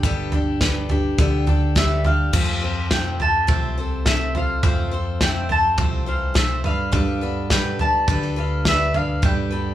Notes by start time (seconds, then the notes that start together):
0.03 G1 G2 G3 B3 D4 G4 A4, kick, floor tom
0.32 D4 G4 A4, floor tom
0.61 B3 D4 G4 A4 B4, kick, snare, floor tom
0.89 D4 G4 A4, floor tom
1.18 D2 D3 G3 B3 D4 G4 A4, kick, floor tom
1.47 D4 G4 A4, floor tom
1.75 G3 B3 D4 G4 A4 E5, kick, snare, floor tom
2.04 D4 G4 A4 F5, floor tom
2.33 F2 F3 A3 C4 A4 C5, kick, floor tom, crash
2.61 C4 A4 C5
2.91 A3 C4 F4 A4 C5 G5, kick, snare
3.19 C4 A4 C5 A5, floor tom
3.47 C2 C3 F3 A3 C4 A4 C5, kick, floor tom
3.78 C4 A4 C5
4.06 A3 C4 A4 C5 E5, kick, snare
4.35 C4 F4 A4 C5 F5, floor tom
4.63 F2 F3 A3 C4 A4 C5, kick, floor tom
4.91 C4 A4 C5
5.21 A3 C4 F4 A4 C5 G5, kick, snare
5.49 C4 A4 C5 A5, floor tom
5.78 C2 C3 F3 A3 C4 A4 C5, kick, floor tom
6.06 E3 C4 A4 C5 F5
6.34 F3 A3 C4 A4 C5 E5, kick, snare
6.64 G2 D4 A4 B4 F5, floor tom
6.92 G3 D4 A4 B4, kick, floor tom
7.21 B3 D4 A4 B4
7.50 G3 D4 A4 B4 G5, kick, snare
7.79 D3 D4 A4 B4 A5, floor tom
8.08 D2 G3 D4 G4 A4 B4, kick, floor tom
8.23 A4
8.36 D4 A4 B4 F5
8.65 G3 B3 D4 A4 B4 E5, kick, snare
8.94 G2 D4 A4 B4 F5, floor tom
9.22 G2 G3 D4 A4 B4 G5, kick, floor tom
9.51 B3 D4 A4 B4